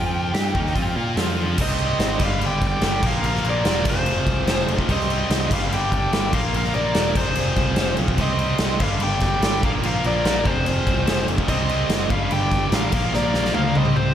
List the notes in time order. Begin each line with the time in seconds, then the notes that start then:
Already playing: F2 F3 C4 F4 G5
0.34 G2 G3 D4 G4, snare, open hi-hat
0.55 D#2 D#3 A#3 D#4, kick
0.67 snare
0.75 F2 F3 C4 F4, kick, open hi-hat
0.96 A#2 A#3 F4 A#4
1.16 F2 F3 C4 F4, snare, open hi-hat
1.58 C2 C3 G3 C4 C5 D#5, kick, crash
1.70 snare
1.79 crash
1.99 G#1, snare, crash
2.19 G1 G2 D3 G3 B4, kick, crash
2.25 F5
2.40 G1 D5, crash
2.46 G5
2.62 D5, kick, snare, crash
2.67 G5
2.81 G1 G2 D3 G3, snare, crash
3.03 A#1 A#2 F3 A#3 A#4 F5, kick, crash
3.23 A#1 A#4 F5, crash
3.35 snare
3.44 A#1 A#4, crash
3.49 D5
3.65 E1 A#2 F3 A#3, snare, crash
3.85 F1 F2 C3 F3 G#4, kick, crash
3.90 C5
4.06 F1, crash
4.26 C2, kick, crash
4.46 F1 F2 C3 F3, snare, crash
4.68 F1, crash
4.79 kick
4.88 C2 C3 G3 C4 C5 D#5, kick, crash
5.01 snare
5.10 crash
5.30 C2, snare, crash
5.50 G1 G2 D3 G3 B4, kick, crash
5.55 F5
5.72 G1 D5 G5, crash
5.92 D5 G5, kick, crash
6.12 G1 G2 D3 G3, snare, crash
6.32 A#1 A#2 F3 A#3 F5, kick, crash
6.36 A#4
6.53 A#1 A#4 F5, crash
6.64 snare
6.74 A#1 A#4 D5, crash
6.95 E1 A#2 F3 A#3, snare, crash
7.15 F1 F2 C3 F3 G#4 C5, kick, crash
7.35 F1, crash
7.56 C2, kick, crash
7.76 F1 F2 C3 F3, snare, crash
7.97 B1, crash
8.08 kick
8.18 C2 C3 G3 C4 C5 D#5, kick, crash
8.39 crash
8.58 C2, snare, crash
8.80 G1 G2 D3 G3 B4 F5, kick, crash
8.99 G1 D5 G5, crash
9.20 D5 G5, kick, snare, crash
9.42 G1 G2 D3 G3, snare, crash
9.62 A#1 A#2 F3 A#4, kick, crash
9.66 A#3 F5
9.82 A#1 A#4 F5, crash
10.04 A#1 A#4 D5, crash
10.25 A#1 A#2 F3 A#3, snare, crash
10.44 F1 F2 C3 F3 G#4 C5, kick, crash
10.66 F1, crash
10.87 C2, kick, crash
11.06 F1 F2 C3 F3, snare, crash
11.28 F1, crash
11.38 kick
11.47 C2 C3 G3 C4 C5 D#5, kick, crash
11.69 crash
11.89 F#1, snare, crash
12.10 G1 G2 D3 G3 B4 F5, kick, crash
12.31 G1 D5 G5, crash
12.51 kick, snare, crash
12.72 A1 G2 D3 G3 A#4 F5, snare, crash
12.92 A#1 A#2 F3 A#3, kick, crash
13.13 A#1 A#4 D5, snare
13.34 A#1, snare
13.45 snare
13.54 D2 A#2 F3 A#3 A#4 F5, high tom
13.75 C2 C3 G3 C4 C5 D#5, high tom
13.85 mid tom
13.96 C2 G4 C5, mid tom